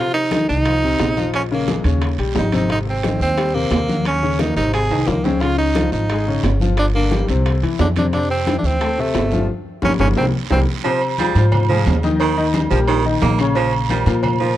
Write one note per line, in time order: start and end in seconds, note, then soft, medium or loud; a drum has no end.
0.00 0.27 C3 medium
0.00 0.27 C4 medium
0.00 0.13 F4 loud
0.14 0.46 D#4 loud
0.14 high bongo soft
0.14 high conga soft
0.31 0.60 D#3 medium
0.31 0.61 D#4 medium
0.31 high bongo soft
0.31 high conga medium
0.31 high timbale medium
0.31 low timbale soft
0.31 short guiro medium
0.49 0.97 C2 medium
0.49 1.30 D#4 loud
0.49 high bongo soft
0.49 high conga soft
0.49 short guiro medium
0.65 0.80 F3 medium
0.65 0.80 F4 medium
0.65 high bongo medium
0.65 high conga soft
0.65 high timbale medium
0.65 long guiro medium
0.83 1.11 C3 medium
0.83 1.12 C4 medium
0.83 high bongo soft
0.83 high conga soft
0.99 1.79 A#1 medium
0.99 high bongo medium
0.99 low bongo medium
0.99 high conga soft
0.99 high timbale medium
0.99 low timbale medium
0.99 short guiro medium
1.17 1.45 F3 medium
1.17 1.45 F4 medium
1.17 high conga medium
1.17 short guiro medium
1.34 1.43 C#4 medium
1.34 high bongo medium
1.34 high conga soft
1.34 high timbale medium
1.34 long guiro medium
1.51 1.65 C#3 medium
1.51 1.84 A#3 medium
1.51 1.66 C#4 medium
1.51 high bongo soft
1.51 high conga soft
1.68 1.82 G#3 medium
1.68 1.82 G#4 medium
1.68 high bongo medium
1.68 high conga loud
1.68 high timbale medium
1.68 low timbale soft
1.68 short guiro medium
1.84 2.16 D#2 medium
1.84 2.13 C#3 medium
1.84 2.13 C#4 medium
1.84 high bongo soft
1.84 high conga soft
1.84 high timbale medium
1.84 short guiro medium
2.01 high bongo medium
2.01 high conga soft
2.01 high timbale medium
2.01 long guiro medium
2.18 2.34 A#1 medium
2.18 2.47 G3 medium
2.18 2.47 G4 medium
2.18 high conga soft
2.18 high timbale medium
2.35 3.15 G#1 medium
2.35 2.53 D#4 medium
2.35 high bongo medium
2.35 low bongo medium
2.35 high conga medium
2.35 low timbale medium
2.35 short guiro medium
2.52 2.67 C3 medium
2.52 2.67 C4 medium
2.52 2.70 D#4 medium
2.52 high bongo soft
2.52 high conga medium
2.52 high timbale medium
2.52 short guiro medium
2.70 2.98 C3 medium
2.70 2.98 C4 medium
2.70 2.79 D#4 medium
2.70 high bongo medium
2.70 high conga soft
2.70 high timbale medium
2.70 long guiro medium
2.87 3.20 C4 medium
2.87 high bongo soft
2.87 high conga soft
3.03 3.32 D#3 medium
3.03 3.32 D#4 medium
3.03 high bongo medium
3.03 high conga medium
3.03 high timbale medium
3.03 low timbale soft
3.03 short guiro medium
3.20 3.68 D#2 medium
3.20 3.56 C4 medium
3.20 high bongo soft
3.20 high conga soft
3.20 short guiro medium
3.38 3.52 G3 medium
3.38 3.52 G4 medium
3.38 high bongo medium
3.38 high conga soft
3.38 high timbale medium
3.38 long guiro medium
3.54 3.83 C3 medium
3.54 4.05 A#3 medium
3.54 3.83 C4 medium
3.54 high bongo soft
3.54 high conga soft
3.71 4.50 D#2 medium
3.71 high bongo medium
3.71 low bongo medium
3.71 high conga soft
3.71 high timbale medium
3.71 low timbale medium
3.71 short guiro medium
3.88 4.17 F#3 medium
3.88 4.17 F#4 medium
3.88 high conga medium
3.88 short guiro medium
4.05 4.41 C#4 medium
4.05 high bongo medium
4.05 high conga soft
4.05 high timbale loud
4.05 long guiro medium
4.21 4.37 C#3 medium
4.21 4.37 C#4 medium
4.21 high bongo soft
4.21 high conga soft
4.39 4.54 A#3 medium
4.39 4.56 D#4 medium
4.39 4.54 A#4 medium
4.39 high bongo medium
4.39 high conga medium
4.39 high timbale medium
4.39 low timbale medium
4.39 short guiro medium
4.56 4.88 G#1 medium
4.56 4.85 C3 medium
4.56 4.85 C4 medium
4.56 4.72 D#4 loud
4.56 high bongo soft
4.56 high conga soft
4.56 high timbale medium
4.56 short guiro medium
4.73 5.09 G#4 loud
4.73 high bongo medium
4.73 high conga soft
4.73 high timbale medium
4.73 long guiro medium
4.90 5.06 C2 medium
4.90 5.19 D#3 medium
4.90 5.19 D#4 medium
4.90 high conga soft
4.90 high timbale medium
5.07 5.87 C#2 medium
5.07 5.26 A#3 medium
5.07 high bongo medium
5.07 low bongo medium
5.07 high conga medium
5.07 short guiro medium
5.24 5.39 C#3 medium
5.24 5.43 C4 medium
5.24 5.39 C#4 medium
5.24 high bongo soft
5.24 high conga medium
5.24 low timbale medium
5.24 short guiro medium
5.40 5.70 C#3 medium
5.40 5.70 C#4 medium
5.40 5.58 F4 loud
5.40 high bongo medium
5.40 high timbale medium
5.40 long guiro medium
5.58 5.90 D#4 loud
5.58 high bongo soft
5.75 6.04 F3 medium
5.75 6.04 F4 medium
5.75 high bongo medium
5.75 high conga medium
5.75 high timbale medium
5.75 low timbale medium
5.75 short guiro medium
5.92 6.40 G#1 medium
5.92 6.46 D#4 medium
5.92 high bongo soft
5.92 high conga soft
5.92 short guiro medium
6.10 6.25 G#3 medium
6.10 6.25 G#4 medium
6.10 high bongo medium
6.10 high conga soft
6.10 high timbale medium
6.10 long guiro medium
6.26 6.55 C#3 medium
6.26 6.55 C#4 medium
6.26 high bongo soft
6.26 high conga soft
6.43 7.23 G1 medium
6.43 high bongo medium
6.43 low bongo medium
6.43 high conga soft
6.43 high timbale medium
6.43 low timbale medium
6.43 short guiro medium
6.60 6.89 F3 medium
6.60 6.89 F4 medium
6.60 high conga medium
6.60 short guiro medium
6.77 6.86 D4 medium
6.77 high bongo medium
6.77 high conga soft
6.77 high timbale loud
6.77 long guiro medium
6.94 7.09 D3 medium
6.94 7.26 A#3 medium
6.94 7.09 D4 medium
6.94 high bongo soft
6.94 high conga soft
7.11 7.26 G3 medium
7.11 7.25 G4 medium
7.11 high bongo medium
7.11 high conga loud
7.11 high timbale medium
7.11 low timbale medium
7.11 short guiro medium
7.28 7.60 C2 medium
7.28 7.57 C3 medium
7.28 7.57 C4 medium
7.28 high bongo soft
7.28 high conga soft
7.28 high timbale medium
7.28 short guiro medium
7.46 high bongo medium
7.46 high conga soft
7.46 high timbale medium
7.46 long guiro medium
7.63 7.78 E2 medium
7.63 7.90 E3 medium
7.63 7.91 E4 medium
7.63 high conga soft
7.63 high timbale medium
7.79 8.58 F2 medium
7.79 7.88 D4 medium
7.79 high bongo medium
7.79 low bongo medium
7.79 high conga medium
7.79 low timbale medium
7.79 short guiro medium
7.96 8.10 C3 medium
7.96 8.10 C4 medium
7.96 8.05 D4 medium
7.96 high bongo soft
7.96 high conga medium
7.96 high timbale medium
7.96 short guiro medium
8.13 8.42 C3 medium
8.13 8.42 C4 medium
8.13 8.29 D4 medium
8.13 high bongo medium
8.13 high conga soft
8.13 high timbale medium
8.13 long guiro medium
8.30 8.56 C4 medium
8.30 high bongo soft
8.30 high conga soft
8.47 8.75 E3 medium
8.47 8.75 E4 medium
8.47 high bongo medium
8.47 high conga medium
8.47 high timbale medium
8.47 low timbale medium
8.47 short guiro medium
8.58 8.67 D4 medium
8.63 9.11 D2 medium
8.63 9.02 C4 loud
8.63 high bongo soft
8.63 high conga soft
8.63 short guiro medium
8.80 8.95 A3 medium
8.80 8.95 A4 medium
8.80 high bongo medium
8.80 high conga soft
8.80 high timbale medium
8.80 long guiro medium
8.98 9.26 C3 medium
8.98 9.50 A3 medium
8.98 9.27 C4 medium
8.98 high bongo soft
8.98 high conga soft
9.14 9.46 G1 medium
9.14 high bongo medium
9.14 low bongo medium
9.14 high conga soft
9.14 high timbale medium
9.14 low timbale medium
9.14 short guiro medium
9.31 9.46 F3 medium
9.31 9.46 F4 medium
9.31 high conga medium
9.31 short guiro medium
9.82 9.95 G1 medium
9.82 9.94 G3 medium
9.82 9.94 A#3 medium
9.82 9.94 C#4 medium
9.82 9.92 C#4 medium
9.82 high bongo medium
9.82 high conga loud
9.82 high timbale medium
9.82 long guiro loud
9.99 10.12 G1 medium
9.99 10.11 G3 medium
9.99 10.11 A#3 medium
9.99 10.11 C#4 loud
9.99 10.08 C#4 medium
9.99 high bongo loud
9.99 high conga medium
9.99 high timbale medium
9.99 long guiro loud
10.16 10.29 C2 medium
10.16 10.28 G3 medium
10.16 10.28 A#3 medium
10.16 10.28 C4 medium
10.16 10.26 C4 medium
10.16 high bongo medium
10.16 high conga medium
10.16 high timbale loud
10.16 long guiro medium
10.50 10.63 C2 medium
10.50 10.62 G3 medium
10.50 10.62 A#3 medium
10.50 10.62 C4 medium
10.50 10.60 C4 medium
10.50 high bongo loud
10.50 high conga medium
10.50 high timbale loud
10.50 long guiro medium
10.84 11.13 C3 medium
10.84 11.02 F3 loud
10.84 11.13 C4 medium
10.84 11.13 C5 medium
10.84 cowbell loud
10.84 high conga soft
10.84 low agogo medium
10.84 long guiro medium
11.01 high conga soft
11.01 low agogo medium
11.18 11.33 F3 medium
11.18 11.46 G3 medium
11.18 11.33 F4 medium
11.18 11.34 G#4 medium
11.18 cowbell medium
11.18 high conga medium
11.18 low timbale medium
11.18 low agogo medium
11.18 short guiro medium
11.35 11.83 G#2 medium
11.35 11.64 F3 medium
11.35 11.64 F4 medium
11.35 11.64 C5 medium
11.35 cowbell medium
11.35 high conga soft
11.35 low agogo medium
11.35 short guiro medium
11.52 cowbell loud
11.52 high conga soft
11.52 low conga medium
11.52 low agogo loud
11.52 long guiro medium
11.69 11.97 F3 medium
11.69 11.98 F4 medium
11.69 11.98 G#4 medium
11.69 high conga soft
11.69 low conga medium
11.86 12.65 D#2 medium
11.86 cowbell medium
11.86 high conga medium
11.86 low timbale medium
11.86 low agogo medium
11.86 short guiro medium
12.03 12.31 D#3 loud
12.03 12.32 D#4 medium
12.03 12.32 D#5 loud
12.03 cowbell medium
12.03 high conga medium
12.03 short guiro medium
12.20 12.48 D#3 loud
12.20 cowbell loud
12.20 high conga soft
12.20 low agogo loud
12.20 long guiro medium
12.37 12.65 D#3 medium
12.37 12.65 D#4 medium
12.37 12.65 D#5 medium
12.37 high conga soft
12.54 cowbell medium
12.54 high conga loud
12.54 low timbale medium
12.54 low agogo medium
12.54 short guiro medium
12.70 13.18 A#1 loud
12.70 12.79 F3 medium
12.70 12.99 G3 medium
12.70 12.99 G4 medium
12.70 12.99 A#4 medium
12.70 high conga soft
12.70 short guiro medium
12.88 13.06 D#3 loud
12.88 cowbell loud
12.88 high conga soft
12.88 low agogo loud
12.88 long guiro medium
13.04 13.33 D#3 medium
13.04 13.33 D#4 medium
13.04 13.33 D#5 medium
13.04 high conga soft
13.21 14.01 A#1 loud
13.21 13.39 A#3 medium
13.21 cowbell medium
13.21 high conga medium
13.21 low timbale medium
13.21 low agogo medium
13.21 short guiro medium
13.38 13.53 C#3 medium
13.38 13.53 C#4 loud
13.38 13.54 C#5 loud
13.38 cowbell medium
13.38 low agogo loud
13.38 short guiro medium
13.55 13.84 C#3 medium
13.55 13.74 F3 loud
13.55 13.84 C#4 medium
13.55 13.84 C#5 medium
13.55 cowbell loud
13.55 high conga soft
13.55 low agogo medium
13.55 long guiro medium
13.73 high conga soft
13.73 low agogo medium
13.89 14.04 F3 medium
13.89 14.17 G3 medium
13.89 14.04 F4 medium
13.89 14.04 A#4 medium
13.89 cowbell medium
13.89 high conga medium
13.89 low timbale medium
13.89 low agogo medium
13.89 short guiro medium
14.06 14.54 A#2 loud
14.06 14.34 F3 medium
14.06 14.34 F4 medium
14.06 14.35 A#4 medium
14.06 cowbell medium
14.06 high conga soft
14.06 low agogo medium
14.06 short guiro medium
14.23 cowbell loud
14.23 high conga soft
14.23 low conga medium
14.23 low agogo loud
14.23 long guiro medium
14.40 14.57 F3 medium
14.40 14.57 F4 medium
14.40 14.57 A#4 medium
14.40 high conga soft